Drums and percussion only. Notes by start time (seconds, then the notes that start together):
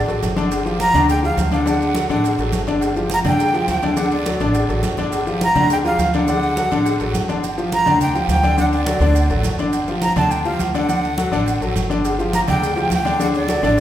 0.08 cowbell, high conga, maracas
0.23 cowbell, high conga, low timbale, low agogo, short guiro, maracas
0.37 cowbell, high conga, short guiro, maracas
0.51 cowbell, high conga, low agogo, long guiro, maracas
0.66 high conga, maracas
0.80 cowbell, high conga, low timbale, low agogo, short guiro, maracas
0.94 cowbell, high conga, low conga, low agogo, short guiro, maracas
1.08 cowbell, high conga, long guiro, maracas
1.24 high conga, low agogo, maracas
1.37 cowbell, high conga, low timbale, low agogo, short guiro, maracas
1.52 cowbell, high conga, short guiro, maracas
1.66 cowbell, high conga, low agogo, long guiro, maracas
1.81 cowbell, high conga, maracas
1.95 cowbell, high conga, low timbale, low agogo, short guiro, maracas
2.09 cowbell, high conga, short guiro, maracas
2.24 cowbell, high conga, low agogo, long guiro, maracas
2.38 cowbell, high conga, maracas
2.52 cowbell, high conga, low timbale, low agogo, short guiro, maracas
2.67 cowbell, short guiro, maracas
2.81 cowbell, low agogo, long guiro, maracas
2.96 high conga, maracas
3.10 cowbell, high conga, low timbale, low agogo, short guiro, maracas
3.24 cowbell, high conga, low conga, low agogo, short guiro, maracas
3.39 cowbell, high conga, long guiro, maracas
3.53 high conga, low agogo, maracas
3.68 cowbell, high conga, low timbale, low agogo, short guiro, maracas
3.82 cowbell, high conga, short guiro, maracas
3.97 cowbell, high conga, low agogo, long guiro, maracas
4.11 cowbell, high conga, maracas
4.26 cowbell, high conga, low timbale, low agogo, short guiro, maracas
4.40 cowbell, high conga, short guiro, maracas
4.54 cowbell, high conga, low agogo, long guiro, maracas
4.69 cowbell, high conga, maracas
4.83 cowbell, high conga, low timbale, low agogo, short guiro, maracas
4.97 cowbell, high conga, short guiro, maracas
5.12 cowbell, high conga, low agogo, long guiro, maracas
5.26 high conga, maracas
5.41 cowbell, high conga, low timbale, low agogo, short guiro, maracas
5.56 cowbell, high conga, low conga, low agogo, short guiro, maracas
5.70 cowbell, high conga, long guiro, maracas
5.85 high conga, low agogo, maracas
5.99 cowbell, high conga, low timbale, low agogo, short guiro, maracas
6.13 cowbell, short guiro, maracas
6.28 cowbell, low agogo, long guiro, maracas
6.43 cowbell, high conga, maracas
6.57 cowbell, high conga, low timbale, low agogo, short guiro, maracas
6.71 cowbell, high conga, short guiro, maracas
6.85 cowbell, high conga, low agogo, long guiro, maracas
7.00 cowbell, high conga, maracas
7.14 cowbell, high conga, low timbale, low agogo, short guiro, maracas
7.28 cowbell, short guiro, maracas
7.43 high conga, low agogo, long guiro, maracas
7.58 high conga, maracas
7.72 high conga, low timbale, low agogo, short guiro, maracas
7.86 high conga, low conga, low agogo, short guiro, maracas
8.01 high conga, low conga, long guiro, maracas
8.15 high conga, low agogo, maracas
8.29 high conga, low timbale, low agogo, short guiro, maracas
8.44 high conga, short guiro, maracas
8.58 high conga, low agogo, long guiro, maracas
8.73 high conga, maracas
8.86 high conga, low timbale, low agogo, short guiro, maracas
9.01 short guiro, maracas
9.15 high conga, low agogo, long guiro, maracas
9.30 high conga, maracas
9.43 high conga, low timbale, low agogo, short guiro, maracas
9.59 short guiro, maracas
9.73 high conga, low agogo, long guiro, maracas
9.88 high conga, maracas
10.02 high conga, low timbale, low agogo, short guiro, maracas
10.16 high conga, low conga, low agogo, short guiro, maracas
10.31 high conga, long guiro, maracas
10.45 high conga, low agogo, maracas
10.59 high conga, low timbale, low agogo, short guiro, maracas
10.74 short guiro, maracas
10.89 high conga, low agogo, long guiro, maracas
11.03 high conga, maracas
11.18 high conga, low timbale, low agogo, short guiro, maracas
11.33 high conga, short guiro, maracas
11.46 high conga, low agogo, long guiro, maracas
11.61 high conga, maracas
11.75 high conga, low timbale, low agogo, short guiro, maracas
11.90 short guiro, maracas
12.05 cowbell, high conga, low agogo, long guiro, maracas
12.19 high conga, maracas
12.33 cowbell, high conga, low timbale, low agogo, short guiro, maracas
12.47 cowbell, high conga, low conga, low agogo, short guiro, maracas
12.62 cowbell, high conga, long guiro, maracas
12.76 high conga, low agogo, maracas
12.90 cowbell, high conga, low timbale, low agogo, short guiro, maracas
13.05 cowbell, high conga, short guiro, maracas
13.19 cowbell, high conga, low agogo, long guiro, maracas
13.34 cowbell, high conga, maracas
13.48 cowbell, high conga, low timbale, low agogo, short guiro, maracas
13.63 cowbell, short guiro, maracas